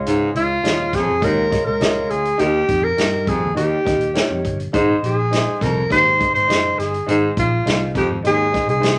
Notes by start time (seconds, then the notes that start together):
Already playing: C#2 C#3 F4 G#4 C#5 D#5
0.07 G#2, closed hi-hat
0.35 C#2 F4, closed hi-hat
0.63 D#2 D#4 G#4 C#5 D#5, snare, closed hi-hat
0.69 F4
0.93 F2 G#4, kick, snare, closed hi-hat
1.09 F2
1.21 C#2 D#2 F4 G#4 A#4 C#5 D#5, kick, closed hi-hat
1.50 F4 G#4 C#5 D#5, kick, snare, closed hi-hat
1.66 C#2 A#4
1.80 C#2 D#4 G#4 C#5 D#5, snare, closed hi-hat
1.86 F4
2.10 D2 G#4, closed hi-hat
2.25 closed hi-hat
2.38 D#2 D#3 D#4 G4 A#4 D#5, closed hi-hat
2.68 F2, kick, closed hi-hat
2.84 A#4
2.97 G2 D#4 G4 A#4 D#5, snare, closed hi-hat
3.27 F2 G#4, kick, closed hi-hat
3.42 D#2
3.54 D#2 D#3 D#4 G4 A#4 D#5, closed hi-hat
3.85 D#2 D#4 G4 A#4 D#5, kick, snare, closed hi-hat
4.01 closed hi-hat
4.14 D#4 G4 A#4 C#5, snare, closed hi-hat
4.30 F2
4.45 G1, kick, closed hi-hat
4.60 closed hi-hat
4.73 G#1 G#2 D#4 G#4 C5 D#5, kick, closed hi-hat
5.03 A#1 G#4, closed hi-hat
5.31 D#4 G#4 C5 D#5, snare, closed hi-hat
5.61 C2 F2 A#4, kick, snare, closed hi-hat
5.90 G#1 D#2 D#4 G#4 C5 D#5, kick, closed hi-hat
6.19 D#4 G#4 C5 D#5, kick, closed hi-hat
6.34 G#1 C5, closed hi-hat
6.47 F#1 D#4 G#4 C5 D#5, snare, closed hi-hat
6.79 G1 G#4, snare, closed hi-hat
6.94 closed hi-hat
7.06 G#1 G#2 D#4 G#4 C5 D#5, closed hi-hat
7.37 A#1 F4, kick, closed hi-hat
7.66 C2 D#4 G#4 C5 D#5, snare, closed hi-hat
7.95 F2 G4, kick, closed hi-hat
8.10 G#1
8.23 G#1 D#2 D#4 G#4 C5 D#5, closed hi-hat
8.52 D#4 G#4 C5 D#5, kick, snare, closed hi-hat
8.68 C2 G#4, closed hi-hat
8.80 C2 D#4 G#4 C5 D#5, closed hi-hat
8.84 snare